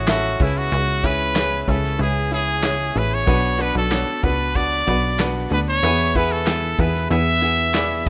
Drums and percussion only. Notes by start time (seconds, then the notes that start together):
0.08 snare, clap, closed hi-hat
0.40 kick, open hi-hat
0.71 closed hi-hat
1.04 kick, closed hi-hat
1.20 closed hi-hat
1.36 snare, clap, closed hi-hat
1.68 kick, closed hi-hat
1.84 snare
2.00 closed hi-hat
2.31 closed hi-hat
2.63 snare, clap, closed hi-hat
2.96 open hi-hat
3.27 kick, closed hi-hat
3.44 closed hi-hat
3.60 closed hi-hat
3.91 snare, clap, closed hi-hat
4.24 kick, closed hi-hat
4.55 kick, closed hi-hat
4.87 kick, closed hi-hat
5.19 snare, clap, closed hi-hat
5.52 open hi-hat
5.83 closed hi-hat
6.00 closed hi-hat
6.15 kick, closed hi-hat
6.47 snare, clap, closed hi-hat
6.79 kick, closed hi-hat
6.95 snare
7.11 closed hi-hat
7.42 closed hi-hat
7.74 snare, clap, closed hi-hat